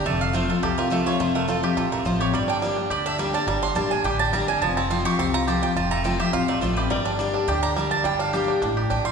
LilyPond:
<<
  \new Staff \with { instrumentName = "Mandolin" } { \time 4/4 \key g \minor \tempo 4 = 210 a''8 f''8 c''8 a'8 a'8 bes'8 c''8 cis''8 | c''8 bes'8 a'8 g'8 a'8 bes'8 c''8 cis''8 | d''8 g''8 r4 d''8 e''8 g''8 a''8 | bes''8 c'''8 a''8 aes''8 g''8 a''8 bes''8 aes''8 |
a''8 bes''8 c'''8 cis'''8 c'''8 bes''8 a''8 g''8 | a''8 bes''8 g''8 e''8 f''8 d''8 c''8 b'8 | bes'8 g'8 r4 g''8 bes''4 a''8 | g''8 f''4. r4 g''8 c'''8 | }
  \new Staff \with { instrumentName = "Resonator guitar played with a steel bar" } { \time 4/4 \key g \minor r1 | r1 | r1 | r1 |
r1 | r1 | d''1~ | d''1 | }
  \new Staff \with { instrumentName = "Five-string banjo" } { \time 4/4 \key g \minor a4 a8 f'8 g'8 f'8 a8 f'8 | f'8 a8 f'8 g'8 f'8 a8 f'8 g'8 | g8 d'8 g8 d'8 g'8 d'8 g8 d'8 | g8 d'8 g8 d'8 g'8 d'8 g8 d'8 |
f8 c'8 f'8 g'8 c'8 f'8 g'8 f'8 | f'8 a8 f'8 g'8 f'8 a8 f'8 g'8 | g8 d'8 g8 d'8 g'8 d'8 g8 d'8 | g8 d'8 g'8 d'8 d'8 g'8 d'8 g8 | }
  \new Staff \with { instrumentName = "Steel-string acoustic guitar" } { \time 4/4 \key g \minor << { r4 <f a c' f'>8 <c' f'>8 r4 <f a c' f'>8 <c' f'>8 | r4 <f a c' f'>8 <c' f'>8 r4 <f a c' f'>8 <c' f'>8 | r4 <g bes d' g'>8 <d' g'>8 r4 <g bes d' g'>8 <d' g'>8 | r4 <g bes d' g'>8 <d' g'>8 r4 <g bes d' g'>8 <d' g'>8 |
r4 <f a c' f'>8 <c' f'>8 r4 <f a c' f'>8 <c' f'>8 | r4 <f a c' f'>8 <c' f'>8 r4 <f a c' f'>4 | r4 <g bes d' g'>4 r4 <g bes d' g'>4 | r4 <g bes d' g'>4 r2 | } \\ { f,2 c2 | f,2 c2 | g,2 d2 | g,2 d2 |
f,2 c2 | f,2 c2 | g,2 d2 | g,2 a,4 bes,4 | } >> }
  \new Staff \with { instrumentName = "Upright bass" } { \clef bass \time 4/4 \key g \minor f,,2 c,2 | f,,2 bes,,4 a,,4 | g,,2 d,2 | g,,4 bes,,4 a,,4 g,,4 |
f,,2 c,2 | f,,2 bes,,4 a,,4 | g,,2 d,2 | g,,2 a,,4 bes,,4 | }
>>